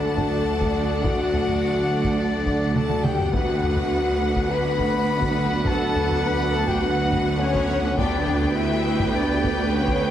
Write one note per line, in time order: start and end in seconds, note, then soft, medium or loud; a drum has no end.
0.00 3.17 D2 medium
0.00 3.30 D2 medium
0.00 3.31 D2 medium
0.00 3.17 F#3 medium
0.00 3.17 A3 medium
0.00 3.32 D4 medium
0.00 3.34 D4 medium
0.00 3.31 F#4 medium
0.00 1.03 A4 medium
0.00 3.30 A4 medium
0.00 3.16 D5 medium
0.00 3.33 D5 medium
0.00 3.33 F#5 medium
0.00 0.76 A5 medium
0.00 1.03 A5 medium
0.17 taiko medium
0.61 taiko medium
1.03 2.18 F#4 loud
1.03 2.16 F#5 medium
1.03 2.20 F#5 medium
1.03 taiko medium
1.33 taiko low medium
1.48 taiko low soft
2.04 taiko medium
2.18 2.75 D4 medium
2.18 2.76 D5 medium
2.18 2.78 D5 medium
2.46 taiko medium
2.75 3.04 A4 loud
2.75 3.04 A5 medium
2.75 3.06 A5 medium
2.75 taiko mid medium
2.89 taiko mid medium
3.03 3.34 G4 loud
3.03 3.33 G5 medium
3.03 3.34 G5 medium
3.03 taiko mid loud
3.19 taiko low loud
3.31 7.93 D2 medium
3.31 7.94 D2 medium
3.31 7.94 F#3 medium
3.31 7.93 B3 loud
3.31 7.94 B3 medium
3.31 7.93 D4 medium
3.31 7.93 F#4 medium
3.31 4.51 F#4 loud
3.31 7.93 B4 medium
3.31 7.97 B4 loud
3.31 4.49 F#5 medium
3.31 7.93 F#5 medium
3.31 7.94 F#5 medium
3.31 4.52 F#5 medium
3.31 taiko loud
3.63 taiko low medium
3.76 taiko low soft
4.35 taiko medium
4.50 5.48 B4 loud
4.50 5.66 B5 loud
4.50 5.69 B5 loud
4.78 taiko medium
5.22 taiko medium
5.65 6.22 A4 loud
5.65 6.23 A5 loud
5.65 6.28 A5 loud
5.65 taiko medium
5.95 taiko low medium
6.11 taiko low medium
6.23 6.53 B4 loud
6.23 6.54 B5 loud
6.51 6.67 A4 loud
6.51 6.69 A5 loud
6.67 6.82 G4 loud
6.67 6.82 G5 loud
6.67 6.83 G5 loud
6.67 taiko medium
6.81 7.39 F#4 loud
6.81 7.42 F#5 loud
6.81 7.41 F#5 loud
7.12 taiko medium
7.39 7.96 C#4 loud
7.39 7.78 C#5 loud
7.39 7.97 C#5 loud
7.54 taiko medium
7.97 10.11 D2 loud
7.97 10.11 D3 loud
7.97 10.11 B3 medium
7.97 10.11 B3 loud
7.97 8.56 D4 loud
7.97 10.11 G4 loud
7.97 10.11 B4 medium
7.97 10.11 B4 loud
7.97 8.57 D5 loud
7.97 8.56 D5 medium
7.97 10.11 G5 loud
7.97 taiko medium
8.27 taiko low medium
8.42 taiko low medium
8.55 9.13 E4 loud
8.55 9.14 E5 loud
8.99 taiko medium
9.12 9.70 D4 medium
9.12 9.72 D5 loud
9.16 9.74 D5 medium
9.44 taiko medium
9.71 10.11 C#4 loud
9.71 10.11 C#5 medium
9.87 taiko medium